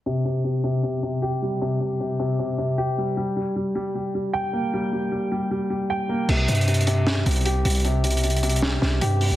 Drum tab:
CC |------------------------------------------------------------------------------------------------|------------------------------------------------------------------------------------------------|------------------------------------------------------------------------------------------------|------------------------------------------------------------------------------------------------|
HH |------------------------------------------------------------------------------------------------|------------------------------------------------------------------------------------------------|------------------------------------------------------------------------------------------------|------------------------------------------------------------------------------------------------|
SD |------------------------------------------------------------------------------------------------|------------------------------------------------------------------------------------------------|------------------------------------------------------------------------------------------------|------------------------------------------------------------------------------------------------|

CC |x-----------------------------------------------------------------------------------------------|------------------------------------------------------------------------------------------------|
HH |------------x---x---x---x---x---x---x-----------------------x--x--x--x--x-----------x--x--x--x--|x-----------x---x---x---x---x---x---x---x---x---------------------------x-----------o-----------|
SD |------------------------------------------------o-----------------------------------------------|------------------------------------------------o-----------o-----------------------------------|